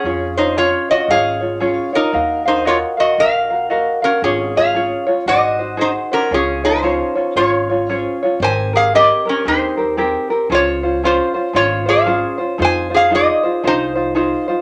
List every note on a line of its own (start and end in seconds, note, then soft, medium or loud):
0.00 0.33 C#4 medium
0.00 0.39 G#4 medium
0.04 0.72 F2 medium
0.04 0.37 C#4 medium
0.04 0.37 F4 medium
0.04 0.37 G#4 medium
0.04 0.36 C#5 medium
0.37 0.56 C#4 soft
0.37 0.56 D#4 medium
0.37 0.57 F4 soft
0.37 0.57 C5 medium
0.37 0.56 C#5 soft
0.57 0.89 C#4 medium
0.57 0.89 F4 medium
0.57 0.87 F4 medium
0.57 0.89 G#4 medium
0.57 0.88 C#5 medium
0.57 0.90 C#5 medium
0.89 1.09 C#4 soft
0.89 1.10 F4 medium
0.89 1.09 F#4 medium
0.89 1.09 C#5 soft
0.89 1.10 D#5 medium
1.08 1.76 G#1 medium
1.08 1.41 C#4 medium
1.08 1.40 F4 medium
1.08 1.41 G#4 medium
1.08 1.90 G#4 medium
1.08 1.39 C#5 medium
1.08 1.97 F5 loud
1.41 1.60 C#4 soft
1.41 1.60 F4 soft
1.41 1.60 C#5 soft
1.60 1.93 C#4 medium
1.60 1.92 F4 medium
1.60 1.93 G#4 medium
1.60 1.91 C#5 medium
1.93 2.12 C#4 soft
1.93 2.43 D#4 medium
1.93 2.13 F4 soft
1.93 2.48 A#4 medium
1.93 2.13 C#5 medium
2.13 2.81 D#2 loud
2.13 2.45 F#4 medium
2.13 2.46 A#4 medium
2.13 2.45 D#5 medium
2.13 2.44 F5 medium
2.46 2.65 D#4 medium
2.46 2.64 F#4 soft
2.46 2.65 A#4 soft
2.46 2.67 C5 medium
2.46 2.65 F5 soft
2.65 2.77 F4 medium
2.65 2.98 F#4 medium
2.65 2.97 A#4 medium
2.65 2.76 C#5 medium
2.65 2.98 D#5 medium
2.65 2.96 F5 medium
2.97 3.17 F#4 soft
2.97 3.18 F#4 medium
2.97 3.18 A#4 soft
2.97 3.20 D#5 medium
2.97 3.17 F5 medium
3.17 3.86 A#1 medium
3.17 3.50 F#4 medium
3.17 3.50 A#4 medium
3.17 4.00 A#4 medium
3.17 3.50 D#5 medium
3.17 3.49 F5 medium
3.17 4.06 F5 loud
3.50 3.69 F#4 soft
3.50 3.70 A#4 medium
3.50 3.70 F5 medium
3.70 4.02 F#4 medium
3.70 4.02 A#4 medium
3.70 4.02 D#5 medium
3.70 4.01 F5 medium
4.02 4.22 C#4 medium
4.02 4.24 F#4 soft
4.02 4.23 A#4 soft
4.02 4.23 A#4 medium
4.02 4.22 F5 soft
4.22 4.90 G#1 medium
4.22 4.56 C#4 medium
4.22 4.53 C#4 medium
4.22 4.55 F4 medium
4.22 4.55 G#4 medium
4.22 4.56 G#4 medium
4.22 4.55 C#5 medium
4.56 4.74 C#4 soft
4.56 4.74 F4 soft
4.56 5.05 G#4 medium
4.56 4.75 C#5 soft
4.56 5.05 F5 medium
4.74 5.07 C#4 medium
4.74 5.06 F4 medium
4.74 5.07 G#4 medium
4.74 5.05 C#5 medium
5.07 5.27 C#4 soft
5.07 5.27 F4 soft
5.07 5.27 C#5 medium
5.26 5.94 G#1 medium
5.26 5.59 D#4 medium
5.26 5.76 F#4 medium
5.26 5.59 F#4 medium
5.26 5.59 G#4 medium
5.26 5.58 C5 medium
5.26 5.82 D#5 loud
5.59 5.76 D#4 soft
5.59 5.77 F#4 soft
5.59 5.77 C5 medium
5.77 6.11 D#4 medium
5.77 5.90 D#4 medium
5.77 6.11 F#4 medium
5.77 6.11 G#4 medium
5.77 6.10 C5 medium
5.82 5.90 C5 medium
6.12 6.31 C#4 medium
6.12 6.32 D#4 soft
6.12 6.32 F#4 soft
6.12 6.33 A#4 medium
6.12 6.32 C5 soft
6.31 6.99 C#2 medium
6.31 6.64 C#4 medium
6.31 6.63 C#4 medium
6.31 6.62 F4 medium
6.31 6.64 G#4 medium
6.31 6.66 G#4 medium
6.31 6.62 C#5 medium
6.64 6.83 C#4 soft
6.64 7.33 D#4 medium
6.64 6.82 F4 soft
6.64 7.36 C5 medium
6.64 6.83 C#5 soft
6.83 7.15 C#4 medium
6.83 7.15 F4 medium
6.83 7.16 G#4 medium
6.83 7.14 C#5 medium
7.15 7.37 C#4 soft
7.15 7.36 F4 soft
7.15 7.36 C#5 medium
7.36 8.04 G#1 medium
7.36 7.69 C#4 medium
7.36 8.17 F4 medium
7.36 7.70 F4 medium
7.36 7.68 G#4 medium
7.36 7.92 C#5 medium
7.36 7.68 C#5 medium
7.70 7.88 C#4 soft
7.70 7.89 F4 soft
7.70 7.89 C#5 medium
7.89 8.21 C#4 medium
7.89 8.22 F4 medium
7.89 8.21 G#4 medium
7.89 8.17 C5 medium
7.89 8.22 C#5 medium
8.23 8.42 C#4 soft
8.23 8.41 F4 medium
8.23 8.42 C#5 medium
8.40 9.08 G#1 loud
8.40 8.74 C4 medium
8.40 8.74 G4 medium
8.40 8.74 G#4 medium
8.40 8.72 A#4 medium
8.40 8.72 C5 medium
8.44 8.76 G#5 medium
8.73 8.94 C4 soft
8.73 8.94 G4 soft
8.73 8.93 G#4 medium
8.73 8.93 A#4 soft
8.73 8.95 F5 medium
8.94 9.26 C4 medium
8.94 9.26 G4 medium
8.94 9.24 G4 medium
8.94 9.26 G#4 medium
8.94 9.24 A#4 medium
8.94 9.27 D#5 loud
9.25 9.45 C4 soft
9.25 9.46 C#4 medium
9.25 9.46 G4 medium
9.25 9.45 A#4 medium
9.29 9.48 A#4 medium
9.45 10.13 D#2 medium
9.45 9.78 C4 medium
9.45 10.27 D#4 medium
9.45 9.77 G4 medium
9.45 9.78 G#4 medium
9.45 9.76 A#4 medium
9.45 10.27 C5 medium
9.77 9.96 C4 soft
9.77 9.97 G4 medium
9.77 9.97 A#4 medium
9.97 10.30 C4 medium
9.97 10.30 G4 loud
9.97 10.29 G#4 medium
9.97 10.29 A#4 medium
10.30 10.50 C4 soft
10.30 10.49 G4 soft
10.30 10.50 A#4 medium
10.50 11.17 C#2 medium
10.50 10.82 C#4 medium
10.50 10.99 F4 medium
10.50 10.83 F4 medium
10.50 10.82 G#4 medium
10.50 10.82 C5 medium
10.55 11.06 C#5 medium
10.83 11.03 C#4 soft
10.83 11.03 F4 soft
10.83 11.02 C5 soft
11.03 11.35 C#4 medium
11.03 11.34 F4 medium
11.03 11.52 F4 medium
11.03 11.35 G#4 medium
11.03 11.33 C5 medium
11.03 11.56 C5 medium
11.34 11.53 C#4 soft
11.34 11.54 F4 soft
11.34 11.54 C5 medium
11.53 12.22 G#1 medium
11.53 11.86 C#4 medium
11.53 11.86 F4 medium
11.53 11.85 F4 medium
11.53 11.86 G#4 medium
11.53 11.85 C5 medium
11.53 11.88 C#5 medium
11.86 12.06 C#4 soft
11.86 12.06 F4 soft
11.86 12.36 G#4 medium
11.86 12.06 C5 medium
11.86 12.36 F5 medium
12.06 12.39 C#4 medium
12.06 12.38 F4 medium
12.06 12.38 G#4 medium
12.06 12.37 C5 medium
12.38 12.59 C#4 soft
12.38 12.58 F4 soft
12.38 12.58 C5 medium
12.58 13.27 F2 loud
12.58 12.90 D#4 medium
12.58 12.90 F4 medium
12.58 12.90 G#4 medium
12.58 12.89 C5 medium
12.58 12.90 C5 medium
12.65 12.94 G#5 loud
12.90 13.09 D#4 soft
12.90 13.10 F4 soft
12.90 13.10 C5 soft
12.94 13.11 G#4 medium
12.94 13.14 F5 medium
13.10 13.43 D#4 medium
13.10 13.43 F4 medium
13.10 13.42 G#4 medium
13.10 13.42 C5 medium
13.15 13.61 G#4 medium
13.15 13.67 D#5 medium
13.43 13.62 D#4 soft
13.43 13.63 F4 medium
13.43 13.63 C5 medium
13.63 14.31 C2 medium
13.63 13.95 D#4 medium
13.63 14.45 D#4 medium
13.63 13.95 F4 medium
13.63 13.95 G#4 medium
13.63 13.94 C5 medium
13.63 14.45 C5 medium
13.95 14.14 D#4 soft
13.95 14.15 F4 soft
13.95 14.15 C5 medium
14.15 14.47 D#4 medium
14.15 14.48 F4 medium
14.15 14.47 G#4 medium
14.15 14.47 C5 loud
14.48 14.61 D#4 medium
14.48 14.61 F4 medium
14.48 14.61 C5 medium